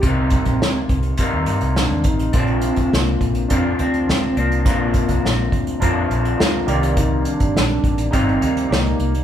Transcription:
<<
  \new Staff \with { instrumentName = "Synth keys" } { \time 4/4 \key bes \major \tempo 4 = 104 r1 | <c' d' f' bes' c''>4. r8 <d' f' bes' c''>4 <d' f' bes' c''>4 | <d' f' bes' c''>4. r8 <d' f' bes' c''>4 <d' f' bes' c''>8 <ees g' bes' d''>8~ | <ees g' bes' d''>4 r4 <ees' g' bes' d''>4 <ees' g' bes' d''>4 | }
  \new Staff \with { instrumentName = "Soft synth lead" } { \time 4/4 \key bes \major c'2 r4 d'8 ees'8 | c'4 bes4 c'8 c'4 bes8~ | bes2~ bes8 r4. | ees'8 d'4. c'4 bes8 bes8 | }
  \new Staff \with { instrumentName = "Clean electric guitar" } { \clef bass \time 4/4 \key bes \major <c g bes ees'>2 <c g bes ees'>2 | <bes, d f c' d'>2 <bes, d f c' d'>8 <f c' d'>4 <f c' d'>8 | <bes, d f c' d'>2 <bes, d f c' d'>4. <c g bes>8~ | <c g bes>2 <c g bes ees'>8 <g bes ees'>4. | }
  \new Staff \with { instrumentName = "Fingered electric bass" } { \clef bass \time 4/4 \key bes \major c,8. bes,,16 d,8 c,8 r16 ees,16 g,16 c,8 ees,16 a,,8 | bes,,8. d,16 c,8 bes,,8 f,8 d,8 d,8 c,8 | bes,,8. c,16 bes,,8 d,8 f,8 bes,,8 d,8 c,8~ | c,8. g,,16 bes,,8 a,,8 g,,8 d,8 c,8 c,8 | }
  \new DrumStaff \with { instrumentName = "Drums" } \drummode { \time 4/4 <hh bd>8 <hh bd>16 <hh bd>16 sn8 <hh bd>16 hh16 <hh bd>8 hh16 hh16 sn16 hh16 <hh bd>16 hh16 | <hh bd>16 hh16 hh16 <hh bd>16 sn16 hh16 <hh bd>16 hh16 <hh bd>8 hh16 hh16 sn8 hh16 hh16 | <hh bd>8 <hh bd>16 <hh bd>16 sn8 <hh bd>16 hh16 <hh bd>8 hh16 hh16 sn8 hh16 hh16 | <hh bd>8 hh16 <hh bd>16 sn16 hh16 <hh bd>16 hh16 <hh bd>16 hh16 hh16 hh16 sn16 hh16 hh16 hh16 | }
>>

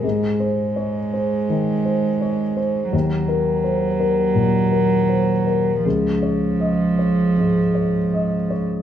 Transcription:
<<
  \new Staff \with { instrumentName = "Grand piano" } { \time 4/4 \key ees \dorian \tempo 4 = 82 aes,8 c''8 des''8 c''8 ees8 c''8 des''8 c''8 | ees,8 bes'8 c''8 bes'8 bes,8 bes'8 c''8 bes'8 | des,8 des''8 ees''8 des''8 aes,8 des''8 ees''8 des''8 | }
  \new Staff \with { instrumentName = "Cello" } { \clef bass \time 4/4 \key ees \dorian aes1 | ges1 | f2.~ f8 r8 | }
>>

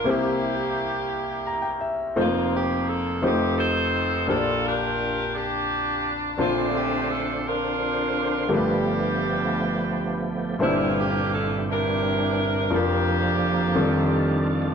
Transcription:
<<
  \new Staff \with { instrumentName = "Saxophone section" } { \time 6/8 \key bes \major \tempo 4. = 57 << { g'2~ g'8 r8 | f'8 g'8 a'8 g'8 c''4 | a'8 bes'4 g'4 r8 | f'8 g'8 a'8 bes'4. |
g'2~ g'8 r8 | e'8 g'8 a'8 bes'4. | g'2~ g'8 r8 | } \\ { <bes e'>2~ <bes e'>8 r8 | <bes c'>4. <c' ees'>8 <ees' a'>4 | <d' f'>8 <d' g'>4 d'4. | <a d'>4. <d' f'>4. |
<b d'>2~ <b d'>8 r8 | <a bes>4. <d' e'>4. | <bes d'>2~ <bes d'>8 r8 | } >> }
  \new Staff \with { instrumentName = "Grand piano" } { \time 6/8 \key bes \major << { r2 bes''16 g''16 e''8 | r2. | r2. | r2. |
r2. | r2. | r2. | } \\ { <c, c bes c' e' g' c''>2. | <f,, f, a bes c' ees' f' c''>4. <f,, f, aes a ees' f' g' c''>4. | <bes,, bes, bes d' f' g' c'' d''>2. | <bes,, bes, c' d' f' c'' a''>2. |
<g,, g, a d' f' g' bes' b'>2. | <g,, g, bes, d' e' c'' a''>2. | <f,, f, d' f' bes'>4. <f,, f, ees g d' f' a'>4. | } >> }
  \new Staff \with { instrumentName = "Tonewheel organ" } { \time 6/8 \key bes \major r2. | r2. | r2. | <c d c' d' c''>2. |
<f a b g'>2. | <g, ees e g c' d' g'>2. | <f, d f bes f'>4. <ees g d' f' a'>4. | }
>>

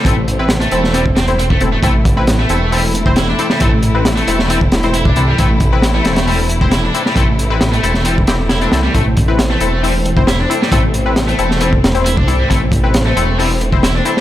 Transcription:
<<
  \new Staff \with { instrumentName = "Synth stab" } { \time 4/4 \key a \minor \tempo 4 = 135 <c' e' a'>16 r8 <c' e' b'>16 r8 <c' e' a'>16 r16 <c' e' a'>8. <c' e' c''>16 r8 <c' e' a'>16 r16 | <c' e' a'>16 r8 <c' e' b'>16 r8 <c' e' a'>16 r16 <c' e' a'>8. <c' e' c''>16 r8 <c' e' a'>16 r16 | <c' e' a'>16 r8 <c' e' b'>16 r8 <c' e' a'>16 r16 <c' e' a'>8. <c' e' c''>16 r8 <c' e' a'>16 r16 | <c' e' a'>16 r8 <c' e' b'>16 r8 <c' e' a'>16 r16 <c' e' a'>8. <c' e' c''>16 r8 <c' e' a'>16 r16 |
<c' e' a'>16 r8 <c' e' b'>16 r8 <c' e' a'>16 r16 <c' e' a'>8 <c' e' g'>16 r8 <c' e' a'>16 <c' e' a'>16 r16 | <c' e' a'>16 r8 <c' e' b'>16 r8 <c' e' a'>16 r16 <c' e' a'>8. <c' e' c''>16 r8 <c' e' a'>16 r16 | <c' e' a'>16 r8 <c' e' b'>16 r8 <c' e' a'>16 r16 <c' e' a'>8. <c' e' c''>16 r8 <c' e' a'>16 r16 | <c' e' a'>16 r8 <c' e' b'>16 r8 <c' e' a'>16 r16 <c' e' a'>8. <c' e' c''>16 r8 <c' e' a'>16 r16 | }
  \new Staff \with { instrumentName = "String section" } { \time 4/4 \key a \minor << { c'1 | e'1~ | e'1~ | e'1~ |
e'1 | c'1~ | c'1~ | c'1 | } \\ { <e a>1~ | <e a>1~ | <e a>1~ | <e a>1~ |
<e a>1~ | <e a>1~ | <e a>1~ | <e a>1 | } >> }
  \new Staff \with { instrumentName = "Distorted electric guitar" } { \time 4/4 \key a \minor a16 r4 a8. g16 r16 c'16 r16 c'16 a16 r16 a16 | a16 r4 a8. g16 r8. e'16 d'8 g16 | a16 r4 a8. g16 r8. e'16 d'8 g16 | a16 r4 a8. g16 r8. e'16 d'8 g16 |
a16 r4 a8. g16 r8. e'16 d'16 r16 g16 | a16 r4 a8. g16 r8. e'16 d'8 g16 | a16 r4 a8. g16 r8. e'16 d'8 g16 | a16 r4 a8. g16 r8. e'16 d'8 g16 | }
  \new Staff \with { instrumentName = "Detuned saw bass" } { \clef bass \time 4/4 \key a \minor a,,4. e,,4 e,,4 e,,8 | a,,4. e,,2 r8 | a,,4. e,,4 e,,4 c,8 | a,,4. e,,2 r8 |
a,,4. e,,4 e,,4 c,8 | a,,4. e,,2 r8 | a,,4. e,,4 e,,4 c,8 | a,,4. e,,2 r8 | }
  \new DrumStaff \with { instrumentName = "Drums" } \drummode { \time 4/4 <hh bd>8 hh8 <hh sn>16 hh16 hh16 sn16 hh16 bd16 <hh sn>16 hh16 hh16 bd16 hh8 | <hh bd>8 <hh bd>8 <hh sn>8 hh8 hho8 hh16 bd16 <hh sn>8 hh16 sn16 | <hh bd>8 hh8 <hh sn>16 hh16 hh16 sn16 hh16 bd16 <hh sn>16 hh16 hh16 bd16 hh8 | <hh bd>8 <hh bd>8 <hh sn>8 <hh sn>16 <hh sn>16 hho8 hh16 bd16 <hh sn>8 hh16 sn16 |
<hh bd>8 hh8 <hh sn>16 hh16 hh16 sn16 hh16 bd16 <hh sn>8 <hh sn>16 hh16 <hh sn>8 | <hh bd>8 <hh bd>8 <hh sn>8 hh8 hho8 hh16 bd16 <hh sn>8 hh16 sn16 | <hh bd>8 hh8 <hh sn>16 hh16 hh16 sn16 hh16 bd16 <hh sn>16 hh16 hh16 bd16 hh8 | <hh bd>8 <hh bd>8 <hh sn>8 hh8 hho8 hh16 bd16 <hh sn>8 hh16 sn16 | }
>>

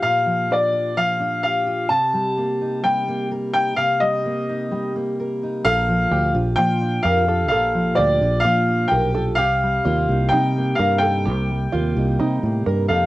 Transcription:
<<
  \new Staff \with { instrumentName = "Upright piano" } { \time 4/4 \key c \dorian \tempo 4 = 128 f''4 d''4 f''4 f''4 | a''2 g''4 r8 g''8 | f''8 ees''2 r4. | f''4. r8 g''4 f''4 |
f''4 d''4 f''4 g''8. r16 | f''2 g''4 f''8 g''8~ | g''2. r8 f''8 | }
  \new Staff \with { instrumentName = "Five-string banjo" } { \time 4/4 \key c \dorian r1 | r1 | r1 | a'4 g'4 f'4 bes'8 a'8 |
a'4 g'4 f'4 bes'8 a'8 | g'4 f'4 ees'4 bes'8 a'8 | g'4 f'4 ees'4 bes'8 a'8 | }
  \new Staff \with { instrumentName = "Steel-string acoustic guitar" } { \time 4/4 \key c \dorian << { g'4 d'8 f'4 d'8 g'8 f'8 | r4 bes8 ees'4 bes8 bes'8 ees'8 | r4 bes8 ees'4 bes8 bes'8 ees'8 | r4 d'8 f'4 d'8 g'8 f'8 |
r4 d'8 f'4 d'8 g'8 f'8 | r4 bes8 ees'4 bes8 bes'8 ees'8 | r4 bes8 ees'4 bes8 bes'8 ees'8 | } \\ { <bes, f>8 f4. f2 | c8 g4. g2 | c8 g4. g2 | bes,8 f4. f2 |
bes,8 f4. f2 | c8 g4. g2 | c8 g4. g2 | } >> }
  \new Staff \with { instrumentName = "Fingered electric bass" } { \clef bass \time 4/4 \key c \dorian r1 | r1 | r1 | bes,,4 d,8 bes,,8 bes,4 f,4 |
bes,,4 d,8 bes,,8 bes,4 ces,4 | c,4 ees,8 c,8 c4 g,4 | c,4 ees,8 c,8 c8 a,8 g,8 f,8 | }
>>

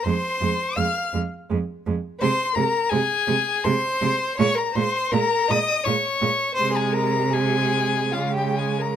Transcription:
<<
  \new Staff \with { instrumentName = "Violin" } { \time 3/4 \key f \minor \tempo 4 = 82 c'''4 f'''8 r4. | \key aes \major c'''8 bes''8 aes''4 c'''4 | des'''16 bes''16 c'''8 bes''8 ees'''8 des'''4 | c'''16 aes''16 bes''8 aes''4 f''16 g''16 aes''16 bes''16 | }
  \new Staff \with { instrumentName = "Violin" } { \time 3/4 \key f \minor c''4 f''8 r4. | \key aes \major c''8 bes'8 aes'4 c''4 | des''16 bes'16 c''8 bes'8 ees''8 des''4 | c''16 aes'16 bes'8 aes'4 f'16 g'16 aes'16 bes'16 | }
  \new Staff \with { instrumentName = "Viola" } { \clef bass \time 3/4 \key f \minor aes8 aes8 aes8 aes8 aes8 aes8 | \key aes \major aes8 aes8 aes8 aes8 aes8 aes8 | aes8 aes8 aes8 aes8 aes8 aes8 | aes4 aes4 aes4 | }
  \new Staff \with { instrumentName = "Cello" } { \clef bass \time 3/4 \key f \minor f,8 f,8 f,8 f,8 f,8 f,8 | \key aes \major c8 c8 c8 c8 c8 c8 | bes,8 bes,8 bes,8 bes,8 bes,8 bes,8 | c2 des4 | }
>>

